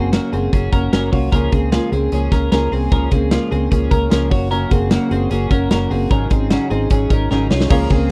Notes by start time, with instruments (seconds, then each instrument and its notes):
Already playing: fingered electric bass F#1, steel-string acoustic guitar F#3 A#3 C#4 F#4, clean electric guitar C4 G#4
0.12 steel-string acoustic guitar F#2 C#3 F#3 A#3 C#4 F#4, clean electric guitar A#3 F#4, snare, closed hi-hat
0.32 fingered electric bass F#1, steel-string acoustic guitar F#3 A#3 C#4 F#4, clean electric guitar C4 G#4, closed hi-hat
0.52 fingered electric bass F#1, steel-string acoustic guitar F#3 A#3 C#4 F#4, clean electric guitar C#4 G#4, kick, closed hi-hat
0.72 fingered electric bass F#1, steel-string acoustic guitar F#3 A#3 C#4 F#4, clean electric guitar C#4 A#4, kick, closed hi-hat
0.92 fingered electric bass F#1, steel-string acoustic guitar F#2 C#3 F#3 A#3 C#4 F#4, clean electric guitar C#4 A#4, snare, closed hi-hat
1.12 fingered electric bass C2, steel-string acoustic guitar F#3 A#3 C#4 F#4, clean electric guitar F4 C#5, kick, open hi-hat
1.32 fingered electric bass C#2, steel-string acoustic guitar C#3 F3 A#3 C#4 G#4, clean electric guitar C#4 A#4, kick, closed hi-hat
1.52 fingered electric bass C#2, steel-string acoustic guitar A#3 C#4 G#4, clean electric guitar C4 G#4, kick, closed hi-hat
1.72 steel-string acoustic guitar C#3 F3 A#3 C#4 G#4, clean electric guitar G#3 F4, snare, closed hi-hat
1.92 fingered electric bass C#2, steel-string acoustic guitar A#3 C#4 G#4, clean electric guitar C4 G#4, closed hi-hat
2.12 fingered electric bass C#2, steel-string acoustic guitar F3 A#3 C#4 G#4, clean electric guitar C#4 G#4, closed hi-hat
2.32 fingered electric bass C#2, steel-string acoustic guitar A#3 C#4 G#4, clean electric guitar C#4 A#4, kick, snare, closed hi-hat
2.52 fingered electric bass C#2, steel-string acoustic guitar C#3 F3 A#3 C#4 G#4, clean electric guitar C#4 A#4, snare, closed hi-hat
2.72 fingered electric bass C2, steel-string acoustic guitar A#3 C#4 G#4, clean electric guitar C4 G#4, open hi-hat
2.91 fingered electric bass C#2, steel-string acoustic guitar C#3 F3 A#3 C#4 G#4, clean electric guitar C#4 A#4, kick, closed hi-hat
3.11 fingered electric bass C#2, steel-string acoustic guitar A#3 C#4 G#4, clean electric guitar C4 G#4, kick, closed hi-hat
3.31 steel-string acoustic guitar C#3 F3 A#3 C#4 G#4, clean electric guitar G#3 F4, snare, closed hi-hat
3.51 fingered electric bass C#2, steel-string acoustic guitar A#3 C#4 G#4, clean electric guitar C4 G#4, closed hi-hat
3.70 fingered electric bass C#2, steel-string acoustic guitar F3 A#3 C#4 G#4, clean electric guitar C#4 G#4, kick, closed hi-hat
3.90 fingered electric bass C#2, steel-string acoustic guitar A#3 C#4 G#4, clean electric guitar C#4 A#4, kick, closed hi-hat
4.10 fingered electric bass C#2, steel-string acoustic guitar C#3 F3 A#3 C#4 G#4, clean electric guitar C#4 A#4, snare, closed hi-hat
4.30 fingered electric bass F#1, steel-string acoustic guitar F#3 A#3 C#4 F#4, clean electric guitar F#4 C#5, kick, open hi-hat
4.50 steel-string acoustic guitar F#2 C#3 F#3 A#3 C#4 F#4, clean electric guitar C#4 A#4, closed hi-hat
4.70 fingered electric bass F#1, steel-string acoustic guitar F#3 A#3 C#4 F#4, clean electric guitar C4 G#4, kick, closed hi-hat
4.90 steel-string acoustic guitar F#2 C#3 F#3 A#3 C#4 F#4, clean electric guitar A#3 F#4, snare, closed hi-hat
5.10 fingered electric bass F#1, steel-string acoustic guitar F#3 A#3 C#4 F#4, clean electric guitar C4 G#4, closed hi-hat
5.29 fingered electric bass F#1, steel-string acoustic guitar F#3 A#3 C#4 F#4, clean electric guitar C#4 G#4, closed hi-hat
5.50 fingered electric bass F#1, steel-string acoustic guitar F#3 A#3 C#4 F#4, clean electric guitar C#4 A#4, kick, closed hi-hat
5.70 fingered electric bass F#1, steel-string acoustic guitar F#2 C#3 F#3 A#3 C#4 F#4, clean electric guitar C#4 A#4, snare, closed hi-hat
5.90 fingered electric bass F#1, steel-string acoustic guitar F#3 A#3 C#4 F#4, clean electric guitar C4 G#4, open hi-hat
6.10 fingered electric bass G#1, steel-string acoustic guitar G#2 C#3 F#3 C#4 D#4 G#4, clean electric guitar C#4 A#4, kick, closed hi-hat
6.30 fingered electric bass G#1, steel-string acoustic guitar F#3 C#4 D#4 G#4, clean electric guitar C4 G#4, kick, closed hi-hat
6.50 steel-string acoustic guitar G#2 C#3 F#3 C#4 D#4 G#4, clean electric guitar C#4 F#4, snare, closed hi-hat
6.70 fingered electric bass G#1, steel-string acoustic guitar F#3 C#4 D#4 G#4, clean electric guitar C4 G#4, closed hi-hat
6.90 fingered electric bass G#1, steel-string acoustic guitar F#3 C#4 D#4 G#4, clean electric guitar C#4 G#4, kick, closed hi-hat
7.10 fingered electric bass G#1, steel-string acoustic guitar F#3 C#4 D#4 G#4, clean electric guitar C#4 A#4, kick, closed hi-hat
7.31 fingered electric bass G#1, steel-string acoustic guitar G#2 C#3 F#3 C#4 D#4 G#4, clean electric guitar C#4 A#4, snare
7.50 fingered electric bass C2, steel-string acoustic guitar F#3 C#4 D#4 G#4, clean electric guitar F4 C#5, snare
7.60 snare
7.69 fingered electric bass C#2, steel-string acoustic guitar C#3 F3 A#3 C#4 G#4, clean electric guitar C#4 A#4, upright piano G#4 A#4 C#5 F5, kick, crash
7.90 fingered electric bass C#2, steel-string acoustic guitar A#3 C#4 G#4, clean electric guitar C4 G#4, kick, ride